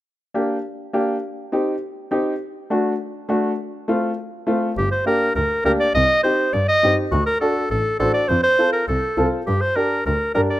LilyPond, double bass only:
\new Staff \with { instrumentName = "Double bass" } { \clef bass \time 4/4 \key g \minor \tempo 4 = 204 r1 | r1 | r1 | r1 |
g,,2 d,4 d,4 | c,2 g,4 g,4 | d,2 a,,4 a,,4 | f,2 c,4 c,4 |
g,2 d,4 g,4 | }